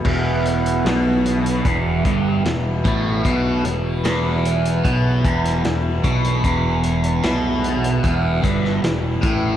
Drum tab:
CC |x---------------|----------------|----------------|
HH |--xxx-xxx-x-x-x-|x-x-x-xxx-xxx-xx|x-xxx-xxx-x-x-x-|
SD |----o-------o---|----o------oo---|----o------oo---|
BD |o-------o-o---o-|o-------o-o---o-|o-------o-o---o-|